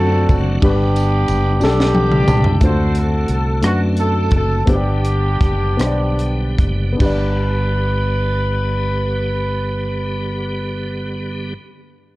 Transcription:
Already playing: fretless electric bass F#2, tonewheel organ D3 F#3 A3 C4 F#4, grand piano D3 C4 D4 F4 F#4 A4 D5, horn section C4 F#4 A4
0.29 fretless electric bass F#1, kick, ride, tambourine
0.60 fretless electric bass G1, tonewheel organ G3 B3 D4, grand piano G3 D4 G4, kick, ride
0.65 horn section B3 D4 G4, grand piano B4
0.96 ride, tambourine
1.28 fretless electric bass F#1, ride, tambourine
1.60 fretless electric bass B1, horn section B3 D4 G4, grand piano D4 G4 A4, snare, tambourine
1.80 snare
1.95 tonewheel organ D5, grand piano G5, high tom
2.12 mid tom
2.27 fretless electric bass C2, tonewheel organ G5, grand piano A5, mid tom, tambourine
2.44 floor tom
2.61 fretless electric bass D2, tonewheel organ D3 A3 C4 F#4, grand piano D3 A3 D4 F4 C5, horn section F#4 A4, kick, closed hi-hat
2.65 horn section C5
2.69 grand piano F#4
2.95 horn section A4, closed hi-hat
3.28 fretless electric bass C2, horn section A4, closed hi-hat
3.62 fretless electric bass F#2, grand piano A3 D4 F#4 B4, cross-stick, closed hi-hat
3.66 horn section F#4
3.97 horn section A4, closed hi-hat
4.31 fretless electric bass F#1, kick, closed hi-hat
4.35 horn section A4
4.66 fretless electric bass G1, tonewheel organ D3 G3 B3 F#4, grand piano G3 B3 D4 G4 C5, kick, closed hi-hat
4.71 horn section B3 D4 G4, tonewheel organ G4
4.75 grand piano D5
5.05 closed hi-hat
5.40 fretless electric bass F#1, kick, cross-stick, closed hi-hat
5.77 fretless electric bass B1, grand piano B3 D4 G4 C5, cross-stick, closed hi-hat
5.87 grand piano D5
6.19 closed hi-hat
6.58 fretless electric bass F#1, kick, closed hi-hat
6.92 grand piano B3
6.97 fretless electric bass G1, grand piano G2 D4, tonewheel organ D3 G3 B3 G4, kick, crash
7.01 grand piano G4, horn section B4
7.06 grand piano D5

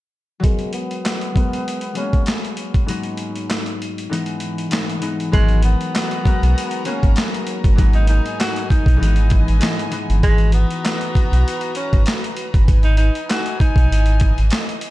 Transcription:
0.40 harp F#3 G#3 B3, kick
0.44 tenor saxophone G#3, harp A#4, closed hi-hat
0.59 closed hi-hat
0.73 tenor saxophone B3, closed hi-hat
0.91 closed hi-hat
1.05 snare, clap, closed hi-hat
1.21 closed hi-hat
1.33 harp F#3 G#3 B3, kick, closed hi-hat
1.39 harp A#4
1.53 closed hi-hat
1.68 closed hi-hat
1.81 closed hi-hat
1.94 harp F#3 G#3 B3, tenor saxophone C#4, closed hi-hat
1.98 harp A#3
2.13 kick, closed hi-hat
2.26 snare, clap, closed hi-hat
2.45 closed hi-hat
2.57 closed hi-hat
2.74 kick, closed hi-hat
2.86 harp G#2 F#3 B3 D#4, closed hi-hat
2.91 harp G#3
3.03 closed hi-hat
3.17 closed hi-hat
3.36 closed hi-hat
3.50 snare, clap, closed hi-hat
3.66 closed hi-hat
3.82 closed hi-hat
3.98 closed hi-hat
4.09 harp G#2 E3 G#3 B3 D#4, closed hi-hat
4.26 closed hi-hat
4.40 closed hi-hat
4.58 closed hi-hat
4.70 harp G#2 E3 G#3 B3 D#4, snare, clap, closed hi-hat
4.90 closed hi-hat
5.00 harp G#2 E3 G#3 D#4, closed hi-hat
5.05 harp B3
5.20 closed hi-hat
5.32 sub bass G#1, harp F#3 G#3 B3 A#4, tenor saxophone G#3, string section F#4 A#4 A#5, kick, closed hi-hat
5.49 closed hi-hat
5.63 tenor saxophone B3, closed hi-hat
5.81 closed hi-hat
5.95 snare, clap, closed hi-hat
6.11 closed hi-hat
6.24 harp F#3 G#3 B3 A#4, kick, closed hi-hat
6.42 sub bass B1, closed hi-hat
6.58 closed hi-hat
6.71 closed hi-hat
6.85 harp F#3 G#3 A#3 B3, tenor saxophone C#4, closed hi-hat
7.03 sub bass G#1, kick, closed hi-hat
7.16 snare, clap, closed hi-hat
7.34 closed hi-hat
7.47 closed hi-hat
7.64 sub bass G1, kick, closed hi-hat
7.76 sub bass G#1, harp G#2 F#3 G#3 D#4, string section D#4 G#5, kick, closed hi-hat
7.81 harp B3
7.93 tenor saxophone D#4, closed hi-hat
8.07 tenor saxophone D#4, closed hi-hat
8.26 closed hi-hat
8.40 tenor saxophone F#4, snare, clap, closed hi-hat
8.56 closed hi-hat
8.70 tenor saxophone D#4, kick, closed hi-hat
8.86 sub bass B1, kick, closed hi-hat
8.97 harp G#2 E3
9.01 sub bass G#1, string section E3 D#5 G#5, harp G#3 D#4, closed hi-hat
9.05 harp B3
9.16 closed hi-hat
9.30 kick, closed hi-hat
9.48 sub bass G#1, closed hi-hat
9.59 harp G#2 E3 D#4, clap, closed hi-hat
9.63 harp G#3 B3, snare
9.79 closed hi-hat
9.90 harp G#2 E3 G#3 B3 D#4, closed hi-hat
10.10 sub bass G1, closed hi-hat
10.23 sub bass G#1, tenor saxophone G#3, string section F#4 B4 A#5, kick, closed hi-hat
10.38 closed hi-hat
10.52 tenor saxophone B3, closed hi-hat
10.71 closed hi-hat
10.85 snare, clap, closed hi-hat
11.01 closed hi-hat
11.15 kick, closed hi-hat
11.32 sub bass B1, closed hi-hat
11.48 closed hi-hat
11.61 closed hi-hat
11.75 tenor saxophone C#4, closed hi-hat
11.93 sub bass G#1, kick, closed hi-hat
12.06 snare, clap, closed hi-hat
12.24 closed hi-hat
12.37 closed hi-hat
12.54 sub bass G1, kick, closed hi-hat
12.68 sub bass G#1, string section D#4 G#5, kick, closed hi-hat
12.83 tenor saxophone D#4, closed hi-hat
12.97 tenor saxophone D#4, closed hi-hat
13.15 closed hi-hat
13.30 tenor saxophone F#4, snare, clap, closed hi-hat
13.46 closed hi-hat
13.60 tenor saxophone D#4, kick, closed hi-hat
13.76 sub bass B1, kick, closed hi-hat
13.90 sub bass G#1, string section E3 D#5, closed hi-hat
14.06 closed hi-hat
14.20 kick, closed hi-hat
14.38 sub bass G#1, closed hi-hat
14.51 snare, clap, closed hi-hat
14.69 closed hi-hat
14.81 closed hi-hat

